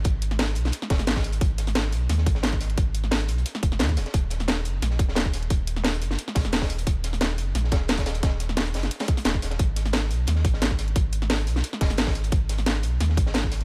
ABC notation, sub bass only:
X:1
M:4/4
L:1/16
Q:"Swing 16ths" 1/4=176
K:Abdor
V:1 name="Sub bass" clef=bass
A,,,6 C,,2 z2 E,,, A,,,4- A,,, | A,,,6 C,,2 E,,2 A,,,6 | A,,,6 C,,2 z2 E,,, A,,, E,,2 E,,, z | E,,,6 G,,,2 B,,,2 E,,,6 |
E,,,6 G,,,2 z2 B,,, E,,,4- E,,, | E,,,6 G,,,2 B,,,2 E,,,6 | E,,,6 G,,,2 z4 E,,,2 E,,,2 | A,,,6 C,,2 E,,2 A,,,6 |
A,,,6 C,,2 z2 E,,, A,,,4- A,,, | A,,,6 C,,2 E,,2 A,,,6 |]